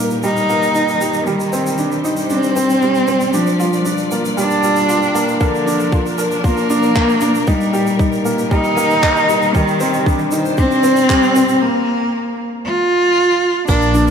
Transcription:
Already playing: string section A#2 D#3 G3 A#4, felt piano A#3 D#4 G4
0.10 string section D#5, shaker
0.23 felt piano G3, cello D#4, shaker
0.37 shaker
0.49 felt piano A#3, shaker
0.63 shaker
0.75 felt piano D#4, shaker
0.88 shaker
1.01 felt piano G4, shaker
1.13 shaker
1.27 cello D#3, felt piano G3, shaker
1.40 shaker
1.53 felt piano C4, string section C5, shaker
1.67 shaker
1.78 felt piano D4, shaker
1.84 string section D5
1.92 shaker
2.04 felt piano D#4, shaker
2.17 shaker
2.30 cello C4, felt piano D4, shaker
2.43 shaker
2.56 felt piano C4, shaker
2.70 shaker
2.82 felt piano G3, shaker
2.95 shaker
3.08 felt piano C4, shaker
3.21 shaker
3.33 cello F3, felt piano D4, shaker
3.47 shaker
3.52 string section F4
3.60 felt piano F4, string section A#4, shaker
3.73 shaker
3.85 felt piano D4, shaker
3.97 shaker
4.11 felt piano A#3, shaker
4.25 shaker
4.37 felt piano G3, cello D4, shaker
4.50 shaker
4.63 felt piano G3, shaker
4.76 shaker
4.89 felt piano F4, shaker
5.02 shaker
5.15 felt piano A#3, shaker
5.28 shaker
5.41 cello D3, string section F3, felt piano A#3, kick, shaker
5.55 string section D4, shaker
5.66 felt piano D4, shaker
5.79 shaker
5.92 felt piano F4, kick, shaker
6.06 shaker
6.18 felt piano A#4, shaker
6.31 shaker
6.44 cello A#3, felt piano F4, kick, shaker
6.57 shaker
6.70 felt piano D4, shaker
6.83 shaker
6.95 felt piano A#3, kick, clap, shaker
7.09 shaker
7.21 felt piano D4, shaker
7.35 shaker
7.47 string section A#2, cello G3, felt piano D#4, kick, shaker
7.61 shaker
7.73 felt piano G4, shaker
7.82 string section G3
7.87 shaker
7.99 string section D#3, felt piano D#4, kick, shaker
8.13 shaker
8.25 felt piano A#3, shaker
8.38 string section D#5, shaker
8.51 felt piano G3, cello D#4, kick, shaker
8.64 shaker
8.77 felt piano A#3, shaker
8.90 shaker
9.03 felt piano D#4, kick, clap, shaker
9.16 shaker
9.29 felt piano G4, shaker
9.42 shaker
9.55 cello D#3, felt piano G3, kick, shaker
9.68 shaker
9.80 felt piano C4, shaker
9.94 shaker
10.06 felt piano D4, kick, shaker
10.19 shaker
10.31 felt piano D#4, string section C5, shaker
10.45 string section D5, shaker
10.58 cello C4, felt piano D4, kick, shaker
10.71 shaker
10.83 felt piano C4, shaker
10.96 shaker
11.10 felt piano G3, kick, clap, shaker
11.23 shaker
11.35 felt piano C4, shaker
11.48 shaker
11.62 cello A#3
12.65 cello F4
13.68 detuned saw bass A#1, string section F3, felt piano A#3, cello D4, kick, crash, shaker
13.82 string section D4, shaker
13.94 felt piano D4, shaker
14.07 shaker

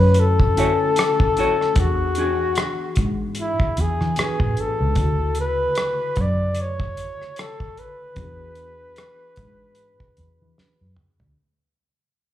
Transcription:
Already playing: fingered electric bass F#2, tine electric piano D3 A3 C#4 E4 F#4, flugelhorn B4
0.14 closed hi-hat
0.20 flugelhorn A4
0.40 kick
0.55 tine electric piano D3 A3 C#4 E4 G#5, hollow-body jazz guitar E4 F#4, closed hi-hat
0.60 hollow-body jazz guitar C#5
0.96 muted hollow-body jazz guitar stroke, cross-stick, closed hi-hat
1.20 kick
1.37 hollow-body jazz guitar E4 F#4 C#5, closed hi-hat
1.61 cross-stick
1.73 fingered electric bass E2, tine electric piano E3 B3 D4, kick, closed hi-hat
1.79 tine electric piano F#4 G#4, flugelhorn F#4
2.15 hollow-body jazz guitar D4 F#4, closed hi-hat
2.19 hollow-body jazz guitar G#4
2.55 cross-stick, closed hi-hat
2.96 fingered electric bass G#2, kick, closed hi-hat
3.35 closed hi-hat
3.41 flugelhorn E4
3.60 kick
3.77 fingered electric bass E2, flugelhorn G#4, closed hi-hat
4.01 fingered electric bass E3, cross-stick
4.16 tine electric piano E3 B3 D4 F#4 B4, flugelhorn G#4, muted fingered electric bass stroke, cross-stick, closed hi-hat
4.40 fingered electric bass A2, kick
4.57 flugelhorn A4, closed hi-hat
4.81 fingered electric bass C#2
4.94 fingered electric bass D2, tine electric piano C#3 D3 A3, kick, closed hi-hat
4.99 tine electric piano E4 F#4
5.35 closed hi-hat
5.41 flugelhorn B4
5.75 cross-stick, closed hi-hat
6.16 fingered electric bass F#2, kick, closed hi-hat
6.21 flugelhorn D5
6.55 closed hi-hat
6.61 flugelhorn C#5
6.80 kick
6.97 closed hi-hat
7.22 cross-stick
7.36 flugelhorn A4, cross-stick, closed hi-hat
7.60 kick
7.77 flugelhorn B4, closed hi-hat
8.15 fingered electric bass E2, tine electric piano E3 B3 D4, kick, closed hi-hat
8.20 tine electric piano F#4 G#4
8.55 closed hi-hat
8.96 cross-stick, closed hi-hat
9.36 fingered electric bass G#2, kick, closed hi-hat
9.75 closed hi-hat
10.00 kick
10.17 fingered electric bass E2, closed hi-hat
10.42 fingered electric bass E3
10.58 muted fingered electric bass stroke, snare
10.81 fingered electric bass F#2
10.97 mid tom
11.20 fingered electric bass D2, floor tom

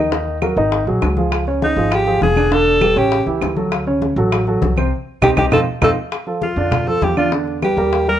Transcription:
Already playing: upright bass D#2
0.00 grand piano D#5
0.12 grand piano D#3 D#4 D#5, high bongo, high conga
0.28 high conga
0.42 grand piano F#3 F#4 A#4, high bongo, high conga, claves
0.57 upright bass G#1, grand piano D#3 D#4 D#5, high bongo, high conga
0.72 high bongo, high conga
0.87 upright bass A#1, grand piano F#3 F#4 G#4, high bongo, high conga
1.02 upright bass C#2, high bongo, low bongo, high conga, claves
1.17 grand piano F3 F4 G#4, high bongo, high conga
1.32 high bongo, high conga, claves
1.47 grand piano C#3 C#4 C#5, high conga
1.62 alto saxophone D#4, high bongo, high conga
1.76 upright bass G#1, grand piano F3 F4 G#4, high bongo, high conga
1.91 alto saxophone G4, high bongo, high conga, claves
2.06 grand piano F3 F4 G#4, high bongo, high conga
2.21 upright bass E1, alto saxophone G#4, high bongo, low bongo, high conga
2.36 grand piano D3 D4 D5, high bongo, high conga, claves
2.52 grand piano D3 D4 D5, alto saxophone A4, high bongo, high conga
2.67 high conga
2.81 grand piano G3 G4 B4, high bongo, high conga, claves
2.96 upright bass A1, grand piano C#3 C#4 C#5, alto saxophone G4, high bongo, high conga
3.12 high bongo, high conga
3.26 upright bass C#2, grand piano E3 E4 G4, high bongo, high conga
3.41 upright bass D2, high bongo, low bongo, high conga, claves
3.56 grand piano F#3 F#4 A4, high bongo, high conga
3.72 high bongo, high conga, claves
3.87 grand piano C#3 C#4 C#5, high conga
4.02 high bongo, high conga
4.16 upright bass A1, grand piano F#3 F#4 A4, high bongo, high conga
4.32 high bongo, high conga, claves
4.47 grand piano F#3 F#4 A4, high bongo, high conga
4.62 upright bass C2, high bongo, low bongo, high conga
4.76 grand piano C3 C4 C5, high bongo, high conga, claves
5.22 upright bass C2, grand piano C4 D#4 G4, alto saxophone G4, low bongo, low conga, claves
5.36 upright bass C2, grand piano C4 D#4 G4, alto saxophone G4, low bongo, low conga, claves
5.51 upright bass F2, grand piano C4 D#4 F4, alto saxophone A4, low bongo, low conga, claves
5.81 upright bass F2, grand piano C4 D#4 F4, alto saxophone A4, low bongo, low conga, claves
6.12 high bongo, high conga, claves
6.27 grand piano F3 F4 A4, high conga
6.42 alto saxophone F4, high bongo, high conga
6.56 upright bass F2, grand piano D3 D4 D5, high bongo, high conga
6.72 high bongo, high conga, low conga, claves
6.87 grand piano F3 F4 A4, alto saxophone A4, high bongo, high conga
7.01 upright bass E2, alto saxophone G4, high bongo, low bongo, high conga
7.17 grand piano D3 D4 D5, alto saxophone F4, high bongo, high conga, claves
7.32 grand piano D3 D4 D5, high bongo, high conga
7.47 high conga
7.62 grand piano G3 G4 B4, alto saxophone G4, high bongo, high conga, claves
7.77 upright bass D#2, grand piano G3 G4 A#4, high bongo, high conga
7.92 high bongo, high conga
8.07 grand piano G3 G4 A#4, alto saxophone A#4, high bongo, high conga

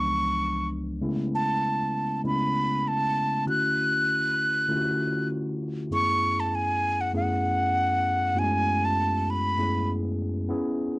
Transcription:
Already playing: tine electric piano C#2 E3 F3 G#3 B3 D4, flute C#6
1.01 tine electric piano C#3 G#3 A3 B3 C#4 E4
1.35 flute A5
2.23 tine electric piano C#3 G#3 A3 B3 C#4 E4, flute B5
2.88 flute A5
3.46 tine electric piano D3 A3 C#4 E4 F#4, flute F#6
4.68 tine electric piano D3 A3 C#4 E4 F4
4.76 tine electric piano F#4
5.91 tine electric piano F#2 G#3 B3 C#4 E4 G#4, flute C#6
5.98 tine electric piano A3
6.40 flute A5
6.55 flute G#5
7.01 flute F#5
7.13 tine electric piano F#2 A3 B3 C#4 E4 G#4, flute F#5
8.35 tine electric piano F#2 A3 B3 C#4 E4 F#4
8.39 tine electric piano G#3, flute G#5
8.85 flute A5
9.30 flute B5
9.58 tine electric piano F#2 A3 B3 C#4 E4 G#4
10.49 tine electric piano B3 C#4 E4 G#4

